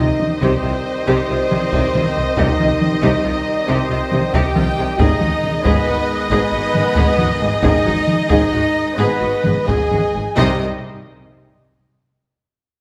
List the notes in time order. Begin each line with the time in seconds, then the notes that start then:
Already playing: D#3 G3 C4 D#4 G4 C5 D#5
0.20 taiko mid
0.41 C2 C3 C4 G4 C5, taiko
0.63 C2 C3 F4
1.07 C2 C3 C4 G4 C5
1.29 C2 C3 F4
1.51 C2 C3 G4, taiko mid
1.73 C2 C3 G4, taiko
1.95 C2 C3 F4, taiko mid
2.15 C2 C3 G4
2.37 C2 C3 D#4 G4 D#5, taiko
2.59 C2 C3 F4, taiko mid
2.81 taiko mid
3.02 C2 C3 D#4 G4 D#5, taiko
3.24 C2 C3 F4
3.67 C2 C3 C4 G4 C5
3.90 C2 C3 F4
4.11 C2 C3 G4, taiko mid
4.34 C2 C3 G4 G5, taiko
4.56 C2 C3 F4, taiko mid
4.78 C2 C3 G4
4.97 G#1 G#2 D#3 G#3 D#4 G#4 D#5, taiko
5.20 G#1 G#2 F#4, taiko mid
5.44 taiko mid
5.64 G#1 G#2 B3 G#4 B4, taiko
5.87 G#1 G#2 F#4
6.30 G#1 G#2 B3 G#4 B4
6.52 G#1 G#2 F#4
6.74 G#1 G#2 G#4, taiko mid
6.96 G#1 G#2 G#4, taiko
7.18 G#1 G#2 F#4, taiko mid
7.41 G#1 G#2 G#4
7.61 G#1 G#2 D#4 G#4 D#5, taiko
7.85 G#1 G#2 F#4, taiko mid
8.07 taiko mid
8.28 G#1 G#2 D#4 G#4 D#5, taiko
8.52 G#1 G#2 F#4
8.96 G#1 G#2 B3 G#4 B4
9.20 G#1 G#2 F#4
9.44 G#1 G#2 G#4, taiko mid
9.67 G#1 G#2 G#4 G#5, taiko
9.91 G#1 G#2 F#4, taiko mid
10.14 G#1 G#2 G#4
10.36 C2 C3 D#3 G3 C4 D#4 G4 C5 D#5, taiko low